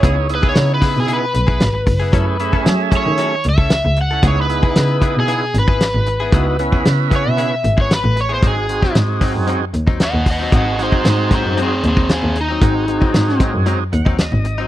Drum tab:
HH |x-x-x-o-x-x-x-o-|x-x-x-x-x-x-x-x-|x-x-x-x-x-x-x-x-|x-x-x-x-x-x-x-x-|
SD |----o-o-----o---|----o-------o---|----o-------o---|----o-------o---|
BD |o--o--o----o--o-|o--o--o----o----|o--o--o----o----|o--o--o----o----|

HH |x-x-x-o-x-x-x-o-|x-x-x-x-x-x-x-x-|x-x-x-x-x-x-x-x-|
SD |---oo-------o---|--o-o-o-----o---|----oo------o---|
BD |o--o--o----o--o-|o--o--o----o----|o--o--o----o----|